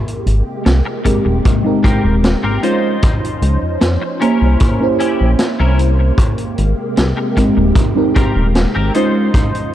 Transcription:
0.00 2.60 C3 medium
0.00 2.60 G#3 medium
0.00 2.60 A#3 medium
0.00 2.60 G4 medium
0.08 closed hi-hat soft
0.26 0.42 G#1 medium
0.26 closed hi-hat medium
0.65 0.82 C2 medium
0.65 muted clean electric guitar stroke soft
0.65 snare loud
0.65 closed hi-hat medium
0.85 muted clean electric guitar stroke medium
1.04 1.60 G#3 medium
1.04 1.60 C4 medium
1.04 1.60 D#4 medium
1.04 1.60 G4 medium
1.04 1.61 A#4 medium
1.04 muted clean electric guitar stroke loud
1.04 kick medium
1.04 closed hi-hat medium
1.25 1.41 D#1 medium
1.25 muted clean electric guitar stroke soft
1.45 kick loud
1.45 closed hi-hat medium
1.63 2.60 G#3 medium
1.63 2.61 C4 medium
1.63 2.61 D#4 medium
1.63 2.61 G4 medium
1.63 2.62 A#4 medium
1.84 2.14 C4 loud
1.84 2.14 G4 loud
1.84 2.14 A#4 loud
1.84 kick loud
1.84 closed hi-hat medium
2.04 2.35 D#1 medium
2.24 snare loud
2.24 closed hi-hat medium
2.43 2.59 G#1 medium
2.43 2.62 C4 medium
2.43 2.63 G4 medium
2.43 2.63 A#4 medium
2.63 4.19 F3 medium
2.63 2.97 G#3 medium
2.63 6.15 C#4 medium
2.63 2.97 C#4 medium
2.63 3.58 D#4 medium
2.63 4.20 D#4 medium
2.63 2.97 D#4 medium
2.63 3.58 F4 medium
2.63 2.98 F4 medium
2.63 6.15 C5 medium
2.63 3.59 C5 medium
2.63 2.98 C5 medium
2.63 closed hi-hat medium
3.02 kick loud
3.02 closed hi-hat medium
3.24 closed hi-hat medium
3.42 3.58 C#2 medium
3.42 closed hi-hat medium
3.62 3.78 F2 soft
3.81 3.98 F2 medium
3.81 muted clean electric guitar stroke soft
3.81 snare loud
3.81 closed hi-hat medium
4.02 muted clean electric guitar stroke medium
4.21 8.91 A#3 medium
4.21 4.76 A#3 medium
4.21 4.85 C#4 medium
4.21 4.76 C#4 medium
4.21 6.16 E4 medium
4.21 4.85 E4 medium
4.21 4.76 E4 medium
4.21 4.77 G4 medium
4.21 4.85 A#4 medium
4.21 4.77 C5 medium
4.21 closed hi-hat medium
4.41 4.56 C2 medium
4.60 kick loud
4.60 closed hi-hat medium
4.80 6.16 A#3 medium
4.80 6.16 C#4 medium
4.80 6.17 E4 medium
4.80 6.17 G4 medium
4.80 6.17 C5 loud
5.00 5.30 C#4 loud
5.00 5.30 E4 medium
5.00 5.30 G4 loud
5.00 closed hi-hat medium
5.20 5.35 A#1 medium
5.39 snare loud
5.39 closed hi-hat medium
5.60 6.12 C2 loud
5.60 5.79 C#4 medium
5.60 5.79 E4 medium
5.60 5.79 A#4 medium
5.79 closed hi-hat medium
5.99 muted clean electric guitar stroke soft
6.18 8.92 C3 medium
6.18 8.92 G#3 medium
6.18 8.92 G4 medium
6.18 kick loud
6.18 closed hi-hat medium
6.38 closed hi-hat soft
6.58 6.74 G#1 loud
6.58 closed hi-hat medium
6.97 7.13 C2 medium
6.97 muted clean electric guitar stroke soft
6.97 snare loud
6.97 closed hi-hat medium
7.17 muted clean electric guitar stroke medium
7.36 7.92 G#3 medium
7.36 7.92 C4 medium
7.36 7.92 D#4 medium
7.36 7.92 G4 medium
7.36 7.92 A#4 medium
7.36 muted clean electric guitar stroke loud
7.36 kick medium
7.36 closed hi-hat medium
7.57 7.72 D#1 medium
7.57 muted clean electric guitar stroke soft
7.75 kick loud
7.75 closed hi-hat medium
7.95 8.92 G#3 medium
7.95 8.92 C4 medium
7.95 8.92 D#4 medium
7.95 8.93 G4 medium
7.95 8.93 A#4 medium
8.15 8.46 C4 loud
8.15 8.46 G4 loud
8.15 8.46 A#4 loud
8.15 kick loud
8.15 closed hi-hat medium
8.36 8.67 D#1 medium
8.55 snare loud
8.55 closed hi-hat medium
8.75 8.91 G#1 medium
8.75 8.94 C4 medium
8.75 8.95 G4 medium
8.75 8.95 A#4 medium
8.94 9.74 C#3 medium
8.94 9.74 F3 medium
8.94 9.29 G#3 medium
8.94 9.29 C#4 medium
8.94 9.74 D#4 loud
8.94 9.74 D#4 medium
8.94 9.29 D#4 medium
8.94 9.74 F4 medium
8.94 9.29 F4 medium
8.94 9.74 C5 medium
8.94 9.74 C5 loud
8.94 9.29 C5 medium
8.94 closed hi-hat medium
9.34 kick loud
9.34 closed hi-hat medium
9.55 closed hi-hat soft

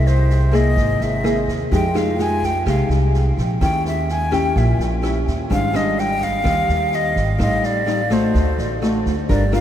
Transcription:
0.00 0.73 C2 medium
0.00 0.74 C3 medium
0.00 0.49 A#3 medium
0.00 0.49 E4 medium
0.00 0.49 G#4 medium
0.06 0.57 C5 medium
0.06 snare soft
0.30 snare soft
0.51 1.19 A#3 medium
0.51 1.20 E4 medium
0.51 1.20 G#4 medium
0.51 1.04 D#5 medium
0.51 kick soft
0.51 cross-stick medium
0.51 snare soft
0.76 0.99 G#1 medium
0.76 1.69 C3 medium
0.76 kick medium
0.76 snare soft
1.00 1.44 G#1 medium
1.00 1.49 E5 medium
1.00 snare soft
1.23 1.69 A#3 medium
1.23 1.69 E4 soft
1.23 1.69 G#4 medium
1.23 cross-stick medium
1.23 snare soft
1.48 1.70 D#2 medium
1.48 kick soft
1.48 snare soft
1.71 2.62 F2 medium
1.71 2.64 F3 medium
1.71 1.85 G#3 medium
1.71 1.85 D#4 medium
1.71 1.85 G4 medium
1.71 1.98 G5 medium
1.71 kick medium
1.71 snare soft
1.94 2.14 G#3 medium
1.94 2.15 D#4 medium
1.94 2.15 G4 medium
1.94 2.22 F5 medium
1.94 cross-stick medium
1.94 snare soft
2.18 2.49 G#3 medium
2.18 2.49 D#4 medium
2.18 2.49 G4 medium
2.18 2.47 G#5 loud
2.18 snare soft
2.43 2.67 G5 medium
2.43 kick soft
2.43 snare soft
2.65 2.88 C2 medium
2.65 3.58 C3 medium
2.65 3.29 G#3 medium
2.65 3.30 D#4 medium
2.65 3.30 G4 medium
2.65 2.89 F5 medium
2.65 kick medium
2.65 cross-stick medium
2.65 snare soft
2.89 3.33 C2 medium
2.89 snare soft
3.14 snare soft
3.37 3.59 A#1 medium
3.37 kick soft
3.37 snare soft
3.61 4.52 D#2 medium
3.61 4.53 D#3 medium
3.61 4.08 C#4 medium
3.61 4.08 E4 medium
3.61 4.09 G4 medium
3.61 3.84 G5 medium
3.61 kick medium
3.61 cross-stick medium
3.61 snare soft
3.85 4.13 E5 medium
3.85 snare soft
4.09 4.35 G#5 loud
4.09 snare soft
4.31 4.99 C#4 medium
4.31 4.99 E4 medium
4.31 4.99 G4 medium
4.31 4.59 G5 medium
4.31 kick soft
4.31 cross-stick medium
4.31 snare soft
4.55 4.78 A#1 medium
4.55 5.48 A#2 medium
4.55 4.80 E5 medium
4.55 kick medium
4.55 snare soft
4.79 5.23 A#1 medium
4.79 snare soft
5.02 5.48 C#4 medium
5.02 5.48 E4 medium
5.02 5.48 G4 medium
5.02 cross-stick medium
5.02 snare soft
5.27 5.49 D#2 medium
5.27 kick soft
5.27 snare soft
5.50 6.41 G#1 medium
5.50 6.42 G#2 medium
5.50 5.70 G3 medium
5.50 5.70 C4 medium
5.50 5.70 D4 medium
5.50 5.78 F5 loud
5.50 kick medium
5.50 snare soft
5.73 6.41 G3 medium
5.73 6.41 C4 medium
5.73 6.41 D4 medium
5.73 6.01 D#5 medium
5.73 cross-stick medium
5.73 snare soft
5.98 6.25 G5 loud
5.98 snare soft
6.21 6.96 F5 loud
6.21 kick soft
6.21 snare soft
6.44 6.67 D#2 medium
6.44 7.37 D#3 medium
6.44 7.35 G3 medium
6.44 7.35 C4 medium
6.44 kick medium
6.44 cross-stick medium
6.44 snare soft
6.69 7.13 D#2 medium
6.69 snare soft
6.92 7.41 D#5 medium
6.92 snare soft
7.16 7.38 G#1 medium
7.16 kick soft
7.16 snare soft
7.38 8.30 A1 medium
7.38 8.31 A2 medium
7.38 7.82 G3 medium
7.38 7.83 C4 medium
7.38 7.83 D#4 medium
7.38 7.66 D#5 medium
7.38 kick medium
7.38 cross-stick medium
7.38 snare soft
7.63 8.14 D5 loud
7.63 snare soft
7.86 8.00 G3 medium
7.86 8.01 C4 medium
7.86 8.01 D#4 medium
7.86 snare soft
8.10 8.77 A3 medium
8.10 8.78 C4 medium
8.10 8.78 F#4 medium
8.10 8.83 C5 medium
8.10 kick soft
8.10 cross-stick medium
8.10 snare soft
8.34 8.56 D2 medium
8.34 9.26 D3 medium
8.34 kick medium
8.34 snare soft
8.58 9.02 A1 medium
8.58 snare soft
8.82 9.13 A3 medium
8.82 9.13 C4 medium
8.82 9.14 F#4 medium
8.82 cross-stick medium
8.82 snare soft
9.06 9.28 D2 medium
9.06 kick soft
9.06 snare soft
9.29 9.61 G1 medium
9.29 9.61 G3 medium
9.29 9.43 D4 medium
9.29 9.43 F4 medium
9.29 9.43 A#4 medium
9.29 9.52 D5 medium
9.29 kick medium
9.29 snare soft
9.52 9.61 D4 medium
9.52 9.61 F4 medium
9.52 9.61 A#4 medium
9.52 9.61 F5 loud
9.52 cross-stick medium
9.52 snare soft

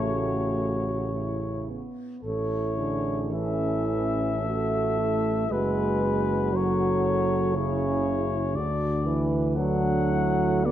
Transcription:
0.00 1.90 A1 soft
0.00 1.89 C#3 soft
0.00 1.08 A3 medium
0.00 1.08 F#4 medium
0.00 1.65 C#5 soft
1.12 1.68 E4 soft
1.69 2.24 B3 soft
2.22 5.46 A1 soft
2.22 3.33 E4 soft
2.22 2.73 A4 soft
2.22 3.28 C#5 soft
2.77 3.32 D3 medium
2.77 3.31 G#4 soft
3.31 4.42 E3 medium
3.31 4.48 C#4 soft
3.31 5.50 A4 soft
3.31 5.53 E5 soft
4.42 5.47 A3 medium
4.42 5.00 F#4 soft
4.99 5.51 E4 soft
5.48 8.57 F#1 soft
5.48 6.54 G#3 medium
5.48 6.02 F#4 soft
5.48 6.38 B4 soft
5.48 6.58 B4 soft
6.03 7.59 F#4 soft
6.53 7.56 F#3 medium
6.53 7.55 A4 soft
6.53 7.56 C#5 soft
7.55 8.56 C#3 medium
7.55 8.57 E4 soft
7.55 8.57 G#4 soft
7.55 8.57 C#5 soft
8.56 10.71 D2 medium
8.56 9.29 D4 soft
8.56 9.06 F#4 soft
8.56 9.29 D5 soft
9.05 9.59 E3 medium
9.05 9.56 B4 medium
9.56 10.66 F#3 medium
9.56 10.12 D4 medium
9.56 10.71 A4 soft
9.56 10.67 F#5 medium
10.11 10.66 E4 medium
10.64 10.71 B3 medium
10.64 10.71 F#4 medium
10.64 10.71 D5 soft

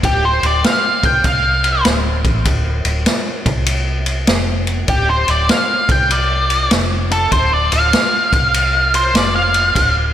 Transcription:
0.03 0.40 D1 medium
0.03 0.24 G4 medium
0.03 kick medium
0.03 ride medium
0.25 0.44 C5 medium
0.43 0.62 D1 medium
0.43 0.65 D5 medium
0.43 ride medium
0.64 1.04 F5 medium
0.64 snare loud
0.64 ride medium
1.03 1.23 C2 medium
1.03 1.25 G5 medium
1.03 kick loud
1.03 ride medium
1.24 1.81 C2 medium
1.24 1.84 F5 loud
1.24 kick loud
1.24 ride medium
1.64 ride medium
1.85 2.22 D1 medium
1.85 snare loud
1.85 ride medium
2.24 2.44 A1 medium
2.24 kick medium
2.24 ride medium
2.45 2.83 D1 medium
2.45 kick medium
2.45 ride medium
2.85 3.05 D1 medium
2.85 ride medium
3.06 snare medium
3.06 ride medium
3.45 4.24 C2 medium
3.45 kick loud
3.45 ride medium
3.66 ride loud
4.06 ride medium
4.27 4.85 F1 medium
4.27 snare loud
4.27 ride medium
4.67 ride medium
4.88 5.26 D1 medium
4.88 5.09 G4 medium
4.88 kick loud
4.88 ride medium
5.09 5.29 C5 medium
5.28 5.48 D1 medium
5.28 5.50 D5 medium
5.28 ride medium
5.49 5.90 F5 medium
5.49 snare loud
5.49 ride medium
5.89 6.67 C2 medium
5.89 6.11 G5 loud
5.89 kick loud
5.89 ride medium
6.11 6.70 D5 medium
6.11 ride medium
6.50 ride medium
6.71 7.28 F1 medium
6.71 snare loud
6.71 ride medium
7.11 7.32 A4 medium
7.11 ride medium
7.31 7.69 D1 medium
7.31 7.52 C5 medium
7.31 kick medium
7.31 ride medium
7.53 7.73 D5 medium
7.72 7.92 D1 medium
7.72 8.91 F5 medium
7.72 ride medium
7.93 snare loud
7.93 ride medium
8.33 9.11 C2 medium
8.33 kick loud
8.33 ride medium
8.54 ride loud
8.94 9.14 C5 medium
8.94 ride medium
9.14 9.71 F1 medium
9.14 9.35 D5 medium
9.14 snare loud
9.14 ride medium
9.36 9.94 F5 loud
9.54 ride medium
9.75 10.12 D1 medium
9.75 kick medium
9.75 ride medium

